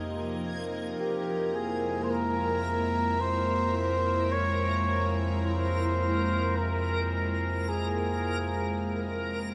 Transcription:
0.00 0.94 F2 medium
0.00 1.00 C3 medium
0.00 9.54 C3 medium
0.00 1.00 F3 medium
0.00 9.54 F3 medium
0.00 1.02 G#3 medium
0.00 9.54 A#3 medium
0.00 1.00 D#4 medium
0.00 9.54 A#4 medium
0.00 1.03 G#6 medium
0.98 9.54 F2 medium
0.98 9.54 E4 medium
0.98 1.56 G4 medium
0.98 9.54 A#4 medium
0.98 9.54 A#5 medium
1.29 9.54 G#3 medium
1.54 2.05 G#4 medium
2.03 2.12 C5 medium
2.11 3.22 A#4 medium
3.20 3.76 C5 medium
3.77 4.33 C5 medium
4.32 5.17 C#5 loud
5.44 6.58 C5 medium
6.56 7.70 A#4 medium
7.69 9.34 G#4 medium

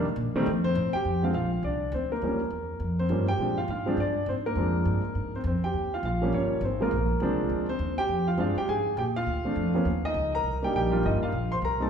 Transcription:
0.00 0.15 C3 medium
0.16 0.33 A#2 loud
0.34 0.46 D#3 medium
0.34 0.46 G3 medium
0.34 0.46 A3 medium
0.34 0.46 C4 medium
0.34 muted upright bass stroke soft
0.46 0.75 F2 medium
0.64 0.93 C4 medium
0.64 0.94 C5 loud
0.75 0.92 A2 loud
0.93 1.22 G4 medium
0.93 1.21 G5 loud
0.93 muted upright bass stroke soft
1.05 1.33 F2 medium
1.23 1.33 D3 medium
1.23 1.33 F3 medium
1.23 1.34 G#3 medium
1.23 1.34 C4 medium
1.23 1.30 F4 medium
1.23 1.29 F5 medium
1.34 1.62 A#1 medium
1.34 1.63 F4 medium
1.34 1.62 F5 medium
1.63 1.91 C2 medium
1.63 1.92 D4 medium
1.63 1.91 D5 medium
1.92 2.21 D2 medium
1.92 2.11 C4 medium
1.92 2.12 C5 medium
2.12 2.22 A#3 medium
2.12 3.02 A#4 medium
2.22 2.50 D#2 medium
2.22 2.38 F3 medium
2.22 2.38 G3 medium
2.22 2.39 A#3 medium
2.22 2.39 C#4 medium
2.50 2.79 E2 medium
2.80 3.08 F2 medium
2.99 3.27 C4 medium
2.99 3.26 C5 medium
3.09 3.37 G2 medium
3.09 3.26 F3 medium
3.09 3.26 G3 soft
3.09 3.26 A#3 medium
3.09 3.27 C#4 medium
3.28 3.56 G4 medium
3.28 3.58 G5 loud
3.38 3.67 A#2 medium
3.38 3.56 F3 medium
3.38 3.56 G#3 soft
3.38 3.56 C4 medium
3.38 3.56 D4 medium
3.58 3.69 F4 medium
3.58 3.69 F5 medium
3.68 3.96 G#2 medium
3.68 3.97 F4 medium
3.68 4.00 F5 medium
3.86 3.97 F3 medium
3.86 3.97 G#3 medium
3.86 3.97 C4 medium
3.86 3.98 D4 medium
3.97 4.26 G2 medium
3.97 4.27 D4 medium
3.97 4.29 D5 medium
4.26 4.55 G#2 medium
4.26 4.34 C4 medium
4.26 4.34 C5 medium
4.46 5.30 A#3 medium
4.46 5.36 A#4 medium
4.55 4.85 F2 medium
4.55 5.00 F3 medium
4.55 5.00 G#3 medium
4.55 5.00 C4 medium
4.55 5.01 D4 medium
4.85 5.14 G2 medium
5.15 5.43 G#2 medium
5.36 5.41 C4 medium
5.36 5.40 C5 medium
5.44 5.61 F2 medium
5.44 5.63 C4 medium
5.44 5.64 C5 medium
5.62 5.91 G4 medium
5.62 5.93 G5 medium
5.62 muted upright bass stroke soft
5.73 6.02 D#2 medium
5.94 6.04 F4 medium
5.94 6.04 F5 medium
6.03 6.32 A#1 medium
6.03 6.32 F4 medium
6.03 6.35 F5 medium
6.22 6.60 F3 medium
6.22 6.60 G3 medium
6.22 6.61 A#3 medium
6.22 6.34 C#4 medium
6.32 6.60 G1 medium
6.32 6.61 C#4 medium
6.32 6.61 C#5 medium
6.61 6.90 G#1 medium
6.61 6.81 C5 medium
6.65 6.80 C4 medium
6.81 6.91 F3 medium
6.81 6.91 G#3 medium
6.81 7.65 A#3 medium
6.81 6.91 C4 medium
6.81 6.92 F4 medium
6.81 7.72 A#4 medium
6.91 7.19 A#1 medium
7.20 7.49 C2 medium
7.20 7.65 F3 medium
7.20 7.65 G#3 medium
7.20 7.65 C4 medium
7.20 7.66 D4 medium
7.49 7.79 D2 medium
7.69 7.97 C4 medium
7.69 7.99 C5 loud
7.79 8.08 D#2 medium
7.98 8.26 G4 medium
7.98 8.25 G5 loud
8.08 8.37 F2 medium
8.28 8.39 F4 medium
8.28 8.39 F5 medium
8.38 8.55 G2 medium
8.38 8.54 F3 medium
8.38 8.54 G#3 medium
8.38 8.55 C4 medium
8.38 8.55 D4 medium
8.38 8.56 F4 medium
8.38 8.58 F5 medium
8.56 8.68 G4 medium
8.56 8.69 G5 medium
8.56 muted upright bass stroke soft
8.68 8.96 G#2 medium
8.68 8.96 G#4 medium
8.68 8.96 G#5 medium
8.97 9.26 A#2 medium
8.97 9.04 G4 medium
8.97 9.03 G5 medium
9.16 10.01 F4 medium
9.16 10.07 F5 loud
9.26 9.55 D2 medium
9.45 9.73 F3 medium
9.45 9.73 A3 medium
9.45 9.73 C4 medium
9.45 9.73 D4 medium
9.56 9.85 F2 medium
9.74 9.85 F3 medium
9.74 9.85 A#3 medium
9.74 9.85 B3 medium
9.74 9.85 C#4 medium
9.85 10.13 D#2 medium
10.05 10.32 D#4 medium
10.05 10.32 D#5 loud
10.14 10.43 C#2 medium
10.35 10.62 A#4 medium
10.35 10.64 A#5 loud
10.44 10.73 C2 medium
10.62 10.89 G3 medium
10.62 10.90 A#3 medium
10.62 10.90 D4 medium
10.62 10.91 D#4 medium
10.62 10.75 G4 medium
10.62 10.74 G5 medium
10.73 11.02 A#1 medium
10.73 11.05 G5 medium
10.78 11.03 G4 medium
10.91 11.30 G3 medium
10.91 11.30 A#3 medium
10.91 11.30 D4 medium
10.91 11.22 F4 medium
11.03 11.20 G1 medium
11.03 11.11 D#4 medium
11.03 11.11 D#5 medium
11.21 11.50 F4 medium
11.21 11.52 F5 medium
11.21 muted upright bass stroke soft
11.32 11.61 A#1 medium
11.52 11.57 C5 medium
11.52 11.57 C6 medium
11.62 11.90 C2 medium
11.62 11.80 A#4 medium
11.62 11.82 A#5 medium
11.80 11.90 G3 medium
11.80 11.90 A3 medium
11.80 11.90 C4 medium
11.80 11.90 D#4 medium
11.80 11.88 A4 medium
11.80 11.87 A5 medium

